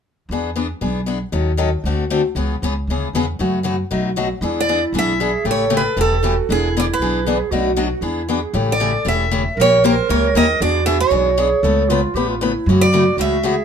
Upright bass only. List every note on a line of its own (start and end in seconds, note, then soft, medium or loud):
0.29 0.71 E2 medium
0.81 1.23 B1 medium
1.32 1.74 D#2 medium
1.84 2.25 D2 medium
2.35 2.56 C#2 medium
2.62 2.84 C#2 medium
2.87 3.09 D2 medium
3.13 3.35 E2 medium
3.39 3.81 F#2 medium
3.91 4.32 B1 medium
4.41 4.83 E2 medium
4.92 5.34 B1 medium
5.45 5.86 A1 medium
5.96 6.38 E1 medium
6.49 6.90 E1 medium
7.00 7.41 B1 medium
7.51 7.92 B1 medium
8.01 8.43 E2 medium
8.53 8.95 A1 medium
9.05 9.47 E1 medium
9.57 9.98 A#1 medium
10.09 10.31 C#2 medium
10.34 10.56 D#2 medium
10.60 11.01 E2 medium
11.11 11.52 B1 medium
11.63 12.04 C#2 medium
12.14 12.55 A1 medium
12.66 13.07 F#2 medium
13.17 13.58 C#2 medium